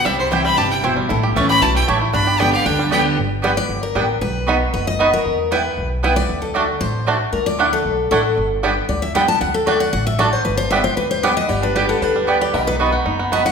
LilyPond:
<<
  \new Staff \with { instrumentName = "Fiddle" } { \time 4/4 \key g \major \tempo 4 = 231 e''8 c''8 r8 b''8 a''8 g''8 r4 | r4. b''8 a''8 g''8 r4 | b''4 g''8 f''8 g''4 g''8 r8 | r1 |
r1 | r1 | r1 | r1 |
r1 | r1 | r1 | r1 |
r1 | }
  \new Staff \with { instrumentName = "Steel-string acoustic guitar" } { \time 4/4 \key g \major << { r4 <e g c' e'>4 r2 | r4 <e a cis' e'>4 r2 | r4 <d g b g'>8 <b g'>8 r4 <d g b g'>4 | r4 b'8 d''4 bes'4. |
b'4. r8 b'8 dis''4 bes'8~ | bes'4 b'4. r8 b'8 d''8~ | d''8 a'4. c''4. r8 | bes'8 d''4 a'4. a'4~ |
a'8 r4. d''8 e''8 g''8 a''8 | fis''8 a'8 d''8 fis''8 fis''8 e''8 d''8 c''8 | b'8 c''8 e''8 c''8 b'8 c''8 d''8 ees''8 | d''8 b'8 g'8 a'8 b'4. d''8 |
dis''8 b'8 r2 a''8 fis''8 | } \\ { c2 c4 b,4 | a,2 b,4 a,4 | g,2 d2 | r1 |
r1 | r1 | r1 | r1 |
r1 | r1 | r1 | r1 |
r1 | } >> }
  \new Staff \with { instrumentName = "Mandolin" } { \time 4/4 \key g \major r4 <c' e' c'' g''>8 r4. <c' e' c'' g''>8 r8 | r4 <a e' cis'' a''>8 r4. <a e' cis'' a''>8 r8 | r4 <b g' d'' g''>8 r4. <b g' d'' g''>8 r8 | r4 <b g' d'' g''>8 r4. <b g' d'' g''>8 r8 |
r4 <b fis' dis'' b''>8 r4. <b fis' dis'' b''>8 r8 | r4 <b e' b' g''>8 r4. <b e' b' g''>8 r8 | r4 <a fis' d'' a''>8 r4. <a fis' d'' a''>8 r8 | r4 <a e' d'' fis''>8 r4. <a e' d'' fis''>8 r8 |
r4 <b g' d'' g''>8 r4. <b g' d'' g''>8 r8 | r4 <a fis' d'' a''>8 r4. <a fis' d'' a''>8 r8 | r4 <b g' d'' g''>8 r4. <b g' d'' g''>8 r8 | r4 <b g' d'' g''>8 r4. <b g' d'' g''>8 r8 |
r4 <b fis' dis'' b''>8 r4. <b fis' dis'' b''>8 r8 | }
  \new Staff \with { instrumentName = "Resonator guitar played with a steel bar" } { \time 4/4 \key g \major c''1 | a'1 | g'2.~ g'8 r8 | r1 |
r1 | r1 | r1 | r1 |
r1 | r1 | r1 | g'1 |
b'1 | }
  \new Staff \with { instrumentName = "Five-string banjo" } { \time 4/4 \key g \major g8 e'8 g'8 g8 g'8 e'8 c'8 g8 | e'8 g'8 cis'8 g'8 e'8 a8 g'8 e'8 | d'8 g'8 b8 g'8 d'8 g8 g'8 d'8 | r4 <g b d'>8 r4. <g b d'>8 r8 |
r4 <b dis'>8 r4. <b dis'>8 r8 | r4 <g b e'>8 r4. <g b e'>8 r8 | r4 <a d'>8 r4. <a d'>8 r8 | r4 <a d'>8 r4. <a d'>8 r8 |
r4 <g b d'>8 r4. <g b d'>8 r8 | r4 <a d'>8 r4. <a d'>8 r8 | r4 <g b d'>8 r4. <g b d'>8 r8 | b8 d'8 g8 b8 d'8 g8 b8 g'8 |
b8 dis'8 dis'8 b8 dis'8 b8 b8 dis'8 | }
  \new Staff \with { instrumentName = "Upright bass" } { \clef bass \time 4/4 \key g \major c,2 g,,2 | a,,4 cis,4 b,,4 a,,4 | g,,2 d,2 | g,,2 g,,4 a,,4 |
b,,2 fis,,2 | e,2 b,,2 | d,2 a,,2 | d,2 b,,4 a,,4 |
g,,2 d,2 | d,2 a,,2 | g,,2 d,2 | g,,2 d,2 |
b,,2 fis,,2 | }
>>